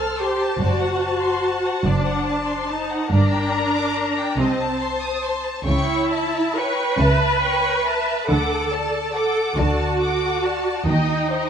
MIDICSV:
0, 0, Header, 1, 6, 480
1, 0, Start_track
1, 0, Tempo, 831025
1, 355, Time_signature, 6, 3, 24, 8
1, 1796, Tempo, 848656
1, 3236, Tempo, 899550
1, 3716, Tempo, 867052
1, 6451, End_track
2, 0, Start_track
2, 0, Title_t, "Violin section"
2, 0, Program_c, 0, 48
2, 0, Note_on_c, 0, 81, 37
2, 1773, Note_off_c, 0, 81, 0
2, 1791, Note_on_c, 0, 82, 44
2, 2514, Note_off_c, 0, 82, 0
2, 2525, Note_on_c, 0, 81, 43
2, 3231, Note_on_c, 0, 85, 41
2, 3240, Note_off_c, 0, 81, 0
2, 3458, Note_off_c, 0, 85, 0
2, 3480, Note_on_c, 0, 81, 37
2, 3712, Note_on_c, 0, 85, 36
2, 3717, Note_off_c, 0, 81, 0
2, 3954, Note_off_c, 0, 85, 0
2, 3959, Note_on_c, 0, 81, 38
2, 4195, Note_off_c, 0, 81, 0
2, 4199, Note_on_c, 0, 85, 38
2, 4420, Note_off_c, 0, 85, 0
2, 4437, Note_on_c, 0, 81, 36
2, 4676, Note_off_c, 0, 81, 0
2, 4676, Note_on_c, 0, 86, 39
2, 4896, Note_off_c, 0, 86, 0
2, 4915, Note_on_c, 0, 81, 38
2, 5150, Note_off_c, 0, 81, 0
2, 5151, Note_on_c, 0, 86, 36
2, 5384, Note_on_c, 0, 81, 36
2, 5389, Note_off_c, 0, 86, 0
2, 5625, Note_on_c, 0, 86, 35
2, 5626, Note_off_c, 0, 81, 0
2, 5848, Note_off_c, 0, 86, 0
2, 5867, Note_on_c, 0, 81, 33
2, 6107, Note_on_c, 0, 75, 37
2, 6108, Note_off_c, 0, 81, 0
2, 6335, Note_off_c, 0, 75, 0
2, 6359, Note_on_c, 0, 79, 35
2, 6451, Note_off_c, 0, 79, 0
2, 6451, End_track
3, 0, Start_track
3, 0, Title_t, "Violin section"
3, 0, Program_c, 1, 48
3, 0, Note_on_c, 1, 72, 36
3, 0, Note_on_c, 1, 89, 32
3, 109, Note_off_c, 1, 89, 0
3, 109, Note_on_c, 1, 84, 36
3, 232, Note_off_c, 1, 84, 0
3, 233, Note_on_c, 1, 81, 33
3, 351, Note_on_c, 1, 74, 37
3, 353, Note_off_c, 1, 81, 0
3, 463, Note_on_c, 1, 78, 33
3, 464, Note_off_c, 1, 74, 0
3, 586, Note_on_c, 1, 81, 34
3, 589, Note_off_c, 1, 78, 0
3, 701, Note_on_c, 1, 84, 34
3, 711, Note_off_c, 1, 81, 0
3, 830, Note_off_c, 1, 84, 0
3, 830, Note_on_c, 1, 81, 35
3, 948, Note_on_c, 1, 78, 33
3, 954, Note_off_c, 1, 81, 0
3, 1067, Note_on_c, 1, 74, 36
3, 1073, Note_off_c, 1, 78, 0
3, 1190, Note_on_c, 1, 78, 37
3, 1192, Note_off_c, 1, 74, 0
3, 1313, Note_off_c, 1, 78, 0
3, 1315, Note_on_c, 1, 81, 37
3, 1427, Note_on_c, 1, 84, 35
3, 1436, Note_off_c, 1, 81, 0
3, 1551, Note_off_c, 1, 84, 0
3, 1554, Note_on_c, 1, 81, 39
3, 1675, Note_off_c, 1, 81, 0
3, 1676, Note_on_c, 1, 78, 35
3, 1767, Note_off_c, 1, 72, 0
3, 1796, Note_off_c, 1, 78, 0
3, 1797, Note_on_c, 1, 74, 44
3, 1801, Note_on_c, 1, 70, 44
3, 1906, Note_off_c, 1, 74, 0
3, 1914, Note_on_c, 1, 79, 37
3, 2031, Note_on_c, 1, 82, 37
3, 2033, Note_off_c, 1, 79, 0
3, 2152, Note_off_c, 1, 82, 0
3, 2158, Note_on_c, 1, 86, 36
3, 2277, Note_off_c, 1, 86, 0
3, 2280, Note_on_c, 1, 82, 39
3, 2399, Note_off_c, 1, 82, 0
3, 2400, Note_on_c, 1, 79, 37
3, 2519, Note_off_c, 1, 70, 0
3, 2519, Note_off_c, 1, 79, 0
3, 2519, Note_on_c, 1, 72, 44
3, 2520, Note_on_c, 1, 75, 40
3, 2629, Note_off_c, 1, 75, 0
3, 2642, Note_on_c, 1, 81, 39
3, 2757, Note_off_c, 1, 81, 0
3, 2758, Note_on_c, 1, 84, 37
3, 2873, Note_off_c, 1, 84, 0
3, 2874, Note_on_c, 1, 87, 36
3, 2991, Note_off_c, 1, 87, 0
3, 2995, Note_on_c, 1, 84, 40
3, 3112, Note_on_c, 1, 81, 38
3, 3114, Note_off_c, 1, 84, 0
3, 3235, Note_on_c, 1, 79, 40
3, 3236, Note_off_c, 1, 81, 0
3, 3237, Note_off_c, 1, 72, 0
3, 3238, Note_on_c, 1, 73, 40
3, 3460, Note_off_c, 1, 79, 0
3, 3461, Note_off_c, 1, 73, 0
3, 3480, Note_on_c, 1, 76, 37
3, 3481, Note_on_c, 1, 81, 38
3, 3717, Note_off_c, 1, 76, 0
3, 3718, Note_off_c, 1, 81, 0
3, 3719, Note_on_c, 1, 73, 38
3, 3720, Note_on_c, 1, 79, 37
3, 3957, Note_on_c, 1, 76, 37
3, 3957, Note_on_c, 1, 81, 36
3, 3958, Note_off_c, 1, 73, 0
3, 3958, Note_off_c, 1, 79, 0
3, 4194, Note_on_c, 1, 73, 36
3, 4194, Note_on_c, 1, 79, 37
3, 4195, Note_off_c, 1, 76, 0
3, 4195, Note_off_c, 1, 81, 0
3, 4417, Note_off_c, 1, 73, 0
3, 4417, Note_off_c, 1, 79, 0
3, 4436, Note_on_c, 1, 81, 40
3, 4437, Note_on_c, 1, 76, 38
3, 4672, Note_on_c, 1, 78, 41
3, 4673, Note_on_c, 1, 69, 41
3, 4675, Note_off_c, 1, 81, 0
3, 4676, Note_off_c, 1, 76, 0
3, 4894, Note_off_c, 1, 69, 0
3, 4894, Note_off_c, 1, 78, 0
3, 4910, Note_on_c, 1, 74, 36
3, 4911, Note_on_c, 1, 81, 37
3, 5147, Note_off_c, 1, 74, 0
3, 5148, Note_off_c, 1, 81, 0
3, 5149, Note_on_c, 1, 69, 34
3, 5149, Note_on_c, 1, 78, 36
3, 5388, Note_off_c, 1, 69, 0
3, 5388, Note_off_c, 1, 78, 0
3, 5390, Note_on_c, 1, 74, 36
3, 5390, Note_on_c, 1, 81, 37
3, 5629, Note_off_c, 1, 74, 0
3, 5629, Note_off_c, 1, 81, 0
3, 5632, Note_on_c, 1, 69, 35
3, 5632, Note_on_c, 1, 78, 36
3, 5852, Note_off_c, 1, 69, 0
3, 5852, Note_off_c, 1, 78, 0
3, 5868, Note_on_c, 1, 74, 35
3, 5868, Note_on_c, 1, 81, 36
3, 6106, Note_on_c, 1, 75, 37
3, 6107, Note_on_c, 1, 79, 37
3, 6108, Note_off_c, 1, 81, 0
3, 6109, Note_off_c, 1, 74, 0
3, 6334, Note_off_c, 1, 75, 0
3, 6335, Note_off_c, 1, 79, 0
3, 6347, Note_on_c, 1, 75, 34
3, 6348, Note_on_c, 1, 72, 37
3, 6451, Note_off_c, 1, 72, 0
3, 6451, Note_off_c, 1, 75, 0
3, 6451, End_track
4, 0, Start_track
4, 0, Title_t, "Viola section"
4, 0, Program_c, 2, 48
4, 0, Note_on_c, 2, 69, 47
4, 119, Note_off_c, 2, 69, 0
4, 119, Note_on_c, 2, 67, 51
4, 352, Note_on_c, 2, 66, 61
4, 356, Note_off_c, 2, 67, 0
4, 1062, Note_off_c, 2, 66, 0
4, 1080, Note_on_c, 2, 62, 54
4, 1557, Note_off_c, 2, 62, 0
4, 1557, Note_on_c, 2, 63, 53
4, 1796, Note_off_c, 2, 63, 0
4, 1796, Note_on_c, 2, 62, 64
4, 2502, Note_off_c, 2, 62, 0
4, 2517, Note_on_c, 2, 60, 50
4, 2754, Note_off_c, 2, 60, 0
4, 3241, Note_on_c, 2, 64, 60
4, 3697, Note_off_c, 2, 64, 0
4, 3714, Note_on_c, 2, 71, 68
4, 4673, Note_off_c, 2, 71, 0
4, 4673, Note_on_c, 2, 69, 55
4, 5141, Note_off_c, 2, 69, 0
4, 5147, Note_on_c, 2, 69, 57
4, 5382, Note_off_c, 2, 69, 0
4, 5387, Note_on_c, 2, 66, 60
4, 6093, Note_off_c, 2, 66, 0
4, 6105, Note_on_c, 2, 63, 58
4, 6451, Note_off_c, 2, 63, 0
4, 6451, End_track
5, 0, Start_track
5, 0, Title_t, "Cello section"
5, 0, Program_c, 3, 48
5, 0, Note_on_c, 3, 36, 43
5, 223, Note_off_c, 3, 36, 0
5, 351, Note_on_c, 3, 42, 46
5, 945, Note_off_c, 3, 42, 0
5, 1075, Note_on_c, 3, 42, 47
5, 1664, Note_off_c, 3, 42, 0
5, 1795, Note_on_c, 3, 43, 52
5, 2385, Note_off_c, 3, 43, 0
5, 2518, Note_on_c, 3, 48, 52
5, 3102, Note_off_c, 3, 48, 0
5, 3236, Note_on_c, 3, 49, 49
5, 3862, Note_off_c, 3, 49, 0
5, 3956, Note_on_c, 3, 49, 53
5, 4580, Note_off_c, 3, 49, 0
5, 4676, Note_on_c, 3, 50, 54
5, 5294, Note_off_c, 3, 50, 0
5, 5386, Note_on_c, 3, 50, 48
5, 6012, Note_off_c, 3, 50, 0
5, 6108, Note_on_c, 3, 51, 51
5, 6451, Note_off_c, 3, 51, 0
5, 6451, End_track
6, 0, Start_track
6, 0, Title_t, "Double bass section"
6, 0, Program_c, 4, 48
6, 0, Note_on_c, 4, 36, 44
6, 222, Note_off_c, 4, 36, 0
6, 347, Note_on_c, 4, 30, 46
6, 943, Note_off_c, 4, 30, 0
6, 1072, Note_on_c, 4, 30, 48
6, 1662, Note_off_c, 4, 30, 0
6, 1790, Note_on_c, 4, 31, 49
6, 2383, Note_off_c, 4, 31, 0
6, 2515, Note_on_c, 4, 36, 51
6, 3100, Note_off_c, 4, 36, 0
6, 3232, Note_on_c, 4, 37, 52
6, 3860, Note_off_c, 4, 37, 0
6, 3952, Note_on_c, 4, 37, 50
6, 4578, Note_off_c, 4, 37, 0
6, 4674, Note_on_c, 4, 38, 52
6, 5293, Note_off_c, 4, 38, 0
6, 5384, Note_on_c, 4, 38, 50
6, 6011, Note_off_c, 4, 38, 0
6, 6100, Note_on_c, 4, 39, 48
6, 6451, Note_off_c, 4, 39, 0
6, 6451, End_track
0, 0, End_of_file